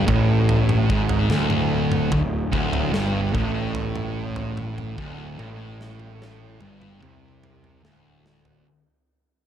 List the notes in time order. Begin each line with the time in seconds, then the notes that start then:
0.07 A1 A2, kick, floor tom
0.49 floor tom
0.69 mid tom
0.89 G#1 G#2, kick
1.09 floor tom
1.30 D1 D2, snare, mid tom
1.50 mid tom
1.92 mid tom
2.12 D1 D2, kick, floor tom
2.52 D1 D2, kick
2.73 floor tom
2.93 G1 G2, snare
3.34 A1 A2, kick, floor tom
3.75 floor tom
3.95 mid tom
4.36 floor tom
4.57 mid tom
4.78 mid tom
4.98 D1 D2, kick
5.39 A1 A2, high tom
5.81 snare
6.00 high tom
6.22 snare
6.61 G1 G2, mid tom
6.82 mid tom
7.01 C2 C3, mid tom
7.44 mid tom
7.64 mid tom
7.83 D1 D2, snare
8.26 snare
8.45 floor tom